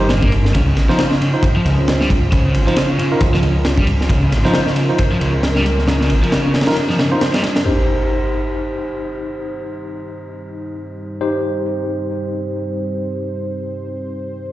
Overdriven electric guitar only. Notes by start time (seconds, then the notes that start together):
0.10 A#2
0.22 A#3
0.54 C#3
0.67 C#3
0.90 F3
0.99 C#3
1.21 C#3
1.56 F3
1.66 C#3
2.01 G3
2.32 C#3
2.45 C#3
2.67 F3
2.77 C#3
2.99 C#3
3.34 F3
3.43 C#3
3.78 G3
4.10 C#3
4.23 C#3
4.45 F3
4.54 C#3
4.77 C#3
5.12 F3
5.21 C#3
5.56 G3
5.88 C#3
6.01 C#3
6.23 F3
6.32 C#3
6.55 C#3
6.90 F3
6.99 C#3
7.34 G3